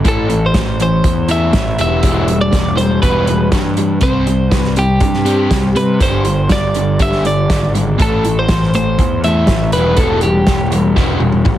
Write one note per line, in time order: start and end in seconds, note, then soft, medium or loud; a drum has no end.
0.05 0.51 A1 medium
0.05 0.28 A2 medium
0.05 0.28 E3 medium
0.05 0.28 A3 medium
0.05 0.45 A4 medium
0.05 kick loud
0.05 closed hi-hat medium
0.29 0.52 A2 medium
0.29 0.52 E3 medium
0.29 closed hi-hat medium
0.46 0.79 C5 medium
0.54 1.00 A1 medium
0.54 0.77 A2 medium
0.54 0.77 E3 medium
0.54 kick loud
0.54 snare medium
0.54 closed hi-hat medium
0.80 1.02 A2 medium
0.80 1.03 E3 medium
0.80 1.31 C5 medium
0.80 closed hi-hat medium
1.04 1.50 E2 medium
1.04 1.27 A2 medium
1.04 1.27 E3 medium
1.04 kick loud
1.04 closed hi-hat medium
1.28 1.52 A2 medium
1.28 1.52 E3 medium
1.28 1.53 A3 loud
1.28 1.80 E5 loud
1.28 closed hi-hat medium
1.53 1.76 A1 medium
1.53 1.76 A2 medium
1.53 1.76 E3 medium
1.53 kick loud
1.53 snare loud
1.53 closed hi-hat medium
1.78 2.01 E1 medium
1.78 2.02 E3 medium
1.78 2.02 G3 loud
1.78 2.02 B3 loud
1.78 2.41 E5 loud
1.78 closed hi-hat medium
2.03 2.49 E1 medium
2.03 2.27 E3 medium
2.03 2.27 G3 medium
2.03 2.27 B3 medium
2.03 kick loud
2.03 closed hi-hat medium
2.28 2.51 E3 medium
2.28 2.51 G3 medium
2.28 closed hi-hat medium
2.41 2.77 D5 medium
2.52 2.99 E1 medium
2.52 2.75 E3 medium
2.52 2.75 G3 medium
2.52 kick medium
2.52 snare medium
2.52 closed hi-hat medium
2.77 3.00 E3 medium
2.77 3.00 G3 medium
2.77 3.01 C5 medium
2.77 closed hi-hat medium
3.02 3.49 E1 loud
3.02 3.26 E3 medium
3.02 3.26 G3 medium
3.02 3.26 B3 medium
3.02 3.49 B4 medium
3.02 kick medium
3.02 closed hi-hat medium
3.27 3.50 E3 medium
3.27 3.50 G3 medium
3.27 closed hi-hat medium
3.52 3.98 G2 medium
3.52 3.75 E3 medium
3.52 3.76 G3 medium
3.52 kick loud
3.52 snare loud
3.52 closed hi-hat medium
3.77 4.00 E3 medium
3.77 4.00 G3 medium
3.77 closed hi-hat medium
4.01 4.48 C2 medium
4.01 4.26 C3 medium
4.01 4.26 G3 medium
4.01 4.26 C4 medium
4.01 4.52 C5 medium
4.01 kick loud
4.01 closed hi-hat medium
4.27 4.50 C3 medium
4.27 4.50 G3 medium
4.27 closed hi-hat medium
4.52 4.98 C2 medium
4.52 4.74 C3 medium
4.52 4.74 G3 medium
4.52 4.73 B4 medium
4.52 kick loud
4.52 snare medium
4.52 closed hi-hat medium
4.64 snare soft
4.76 4.99 C3 medium
4.76 4.99 G3 medium
4.76 5.80 G4 medium
4.76 closed hi-hat medium
5.00 5.47 G2 loud
5.00 5.23 C3 medium
5.00 5.24 G3 medium
5.00 kick loud
5.00 closed hi-hat medium
5.14 snare soft
5.25 5.49 C3 medium
5.25 5.49 G3 medium
5.25 5.50 C4 medium
5.25 closed hi-hat medium
5.51 5.74 C2 medium
5.51 5.73 C3 medium
5.51 5.74 G3 medium
5.51 kick loud
5.51 snare loud
5.51 closed hi-hat medium
5.75 5.98 C3 medium
5.75 5.98 G3 medium
5.75 6.02 B4 medium
5.75 closed hi-hat medium
6.00 6.47 G1 medium
6.00 6.23 G2 medium
6.00 6.24 D3 medium
6.00 6.25 G3 medium
6.00 6.52 C5 medium
6.00 kick loud
6.00 closed hi-hat medium
6.25 6.48 G2 medium
6.25 6.48 D3 medium
6.25 closed hi-hat medium
6.49 6.96 G1 medium
6.49 6.73 G2 medium
6.49 6.73 D3 medium
6.49 7.02 D5 medium
6.49 kick loud
6.49 snare medium
6.49 closed hi-hat medium
6.74 6.98 G2 medium
6.74 6.98 D3 medium
6.74 closed hi-hat medium
6.99 7.46 G1 loud
6.99 7.23 G2 medium
6.99 7.24 D3 medium
6.99 7.24 G3 medium
6.99 7.26 E5 loud
6.99 kick loud
6.99 closed hi-hat medium
7.12 snare soft
7.25 7.48 G2 medium
7.25 7.48 D3 medium
7.25 7.72 D5 medium
7.25 closed hi-hat medium
7.50 7.96 G#1 medium
7.50 7.72 G2 medium
7.50 7.72 D3 medium
7.50 kick loud
7.50 snare loud
7.50 closed hi-hat medium
7.75 7.97 G2 medium
7.75 7.97 D3 medium
7.75 closed hi-hat medium
7.99 8.45 A1 medium
7.99 8.23 A2 medium
7.99 8.23 E3 medium
7.99 8.23 A3 medium
7.99 8.39 A4 medium
7.99 kick loud
7.99 closed hi-hat medium
8.25 8.47 A2 medium
8.25 8.47 E3 medium
8.25 closed hi-hat medium
8.39 8.73 C5 medium
8.49 8.95 A1 medium
8.49 8.72 A2 medium
8.49 8.72 E3 medium
8.49 kick loud
8.49 snare medium
8.49 closed hi-hat medium
8.62 snare soft
8.74 8.97 A2 medium
8.74 8.97 E3 medium
8.74 9.21 C5 medium
8.74 closed hi-hat medium
8.99 9.45 E2 loud
8.99 9.22 A2 medium
8.99 9.22 E3 medium
8.99 kick loud
8.99 closed hi-hat medium
9.24 9.48 A2 medium
9.24 9.48 E3 medium
9.24 9.48 A3 medium
9.24 9.70 E5 medium
9.24 closed hi-hat medium
9.47 9.71 A1 medium
9.47 9.72 A2 medium
9.47 9.72 E3 medium
9.47 kick loud
9.47 snare loud
9.47 closed hi-hat medium
9.72 9.96 E1 medium
9.72 9.98 E3 medium
9.72 9.98 G3 medium
9.72 9.99 B4 medium
9.72 closed hi-hat medium
9.76 9.98 B3 medium
9.97 10.43 E1 medium
9.97 10.22 E3 medium
9.97 10.23 G3 medium
9.97 10.23 B3 medium
9.97 10.23 A4 medium
9.97 kick loud
9.97 closed hi-hat medium
10.21 10.46 E3 medium
10.21 10.46 G3 medium
10.21 10.69 G4 medium
10.21 closed hi-hat medium
10.47 10.93 E1 medium
10.47 10.71 E3 medium
10.47 10.71 G3 medium
10.47 kick loud
10.47 snare medium
10.47 closed hi-hat medium
10.72 10.95 E3 medium
10.72 10.95 G3 medium
10.72 closed hi-hat medium
10.96 11.43 E1 loud
10.96 11.19 E3 medium
10.96 11.20 G3 medium
10.96 11.21 B3 medium
10.96 kick loud
10.96 snare soft
11.20 11.44 E3 medium
11.20 11.44 G3 medium
11.20 high tom medium
11.32 high tom medium
11.45 11.58 A1 medium
11.45 11.58 E3 medium
11.45 11.58 G3 medium
11.45 kick loud
11.45 mid tom medium